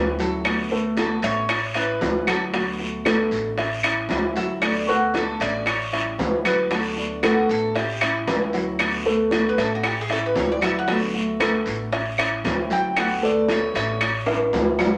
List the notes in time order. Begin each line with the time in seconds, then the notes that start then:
Already playing: D2 E3 G3 C#4 E4 B4 E5
0.19 F#3 G3 C#4 E4 F#4 A4 F#5, short guiro
0.44 D3 A3 B3 F#4, high bongo, high timbale, long guiro, claves
0.71 A3 B3 F#4 A4 B4, high bongo
0.97 D3 A3 B3 F#4 A4, high bongo, high timbale, low timbale, short guiro
1.22 A1 C#4 C#5 E5, high bongo, high timbale, short guiro
1.49 muted nylon-string guitar stroke, high bongo, high timbale, long guiro, claves
1.74 G3 C#4 E4 B4 C#5 E5, high bongo, high timbale
2.01 D2 E3 G3 C#4 E4, high bongo, low bongo, low timbale, short guiro
2.26 F#3 G3 C#4 E4 F#4 A4 F#5, high timbale, short guiro, claves
2.53 D3 F#3 A3 B3 F#4 F#5, high bongo, high timbale, long guiro
2.79 A3 B3 F#4, high bongo
3.04 D3 A3 B3 F#4 A4 B4, high bongo, high timbale, low timbale, short guiro, claves
3.31 A1, high bongo, short guiro
3.57 C#4 C#5 E5, muted nylon-string guitar stroke, high bongo, high timbale, long guiro
3.83 G3 C#4 E4 C#5 E5, high bongo, high timbale, claves
4.09 D2 E3 G3 C#4 E4, high bongo, low bongo, high timbale, low timbale, short guiro
4.36 F#3 G3 C#4 E4 F#4 E5 F#5, short guiro
4.62 D3 A3 B3 F#4 D5, high bongo, high timbale, long guiro, claves
4.88 A3 B3 F#4 A4 B4, high bongo
5.14 D3 A3 B3 F#4 A4, high bongo, high timbale, low timbale, short guiro
5.40 A1 C#4 C#5 D5 E5, high bongo, high timbale, short guiro
5.66 C#5, muted nylon-string guitar stroke, high bongo, high timbale, long guiro, claves
5.92 G3 C#4 E4 C#5 E5, high bongo, high timbale
6.18 D2 E3 G3 C#4 E4, high bongo, low bongo, low timbale, short guiro
6.45 F#3 G3 C#4 E4 F#4 B4 F#5, high timbale, short guiro, claves
6.71 D3 F#3 A3 B3 F#4 A4 F#5, high bongo, high timbale, long guiro
6.96 A3 B3 D4 F#4, high bongo
7.23 D3 A3 B3 F#4 A4 B4, high bongo, high timbale, low timbale, short guiro, claves
7.49 A1 A4, high bongo, short guiro
7.75 C#4 C#5 E5, muted nylon-string guitar stroke, high bongo, high timbale, long guiro
7.79 G4
8.01 G3 C#4 E4 C#5 E5, high bongo, high timbale, claves
8.27 D2 E3 G3 C#4 E4, high bongo, low bongo, high timbale, low timbale, short guiro
8.53 F#3 G3 C#4 E4 F#4 F#5, short guiro
8.79 D3 A3 B3 F#4, high bongo, high timbale, long guiro, claves
9.05 A3 B3 F#4 A4 B4, high bongo
9.31 D3 A3 B3 F#4, high bongo, high timbale, low timbale, short guiro
9.49 B4
9.57 A1 C#4 A4 C#5 E5, high bongo, high timbale, short guiro
9.75 F#4
9.83 G4, muted nylon-string guitar stroke, high bongo, high timbale, long guiro, claves
10.01 G#4
10.09 G3 C#4 E4 A4 C#5 E5, high bongo, high timbale
10.26 B4
10.36 D2 E3 G3 C#4 E4 C#5, high bongo, low bongo, low timbale, short guiro
10.52 D5
10.61 F#3 G3 C#4 E4 F#4 E5 F#5, high timbale, short guiro, claves
10.79 F#5
10.88 D3 F#3 A3 B3 F#4 F#5, high bongo, high timbale, long guiro
10.92 E5
11.14 A3 B3 F#4, high bongo
11.40 D3 A3 B3 F#4 A4 B4, high bongo, high timbale, low timbale, short guiro, claves
11.66 A1, high bongo, short guiro
11.92 C#4 C#5 E5, muted nylon-string guitar stroke, high bongo, high timbale, long guiro
12.18 G3 C#4 E4 C#5 E5, high bongo, high timbale, claves
12.44 D2 E3 G3 C#4 E4, high bongo, low bongo, high timbale, low timbale, short guiro
12.70 F#3 G3 C#4 E4 F#4 F#5 G5, short guiro
12.96 D3 A3 B3 F#4 F#5, high bongo, high timbale, long guiro, claves
13.22 A3 B3 F#4 A4 B4 D5, high bongo
13.48 D3 A3 B3 F#4 C#5, high bongo, high timbale, low timbale, short guiro
13.74 A1 C#4 C#5 E5, high bongo, high timbale, short guiro
14.01 muted nylon-string guitar stroke, high bongo, high timbale, long guiro, claves
14.26 G3 C#4 E4 C#5 E5, high bongo, high timbale
14.52 D2 E3 G3 C#4 E4, high bongo, low bongo, low timbale, short guiro
14.79 F#3 G3 C#4 E4 F#4 F#5, low timbale, short guiro, claves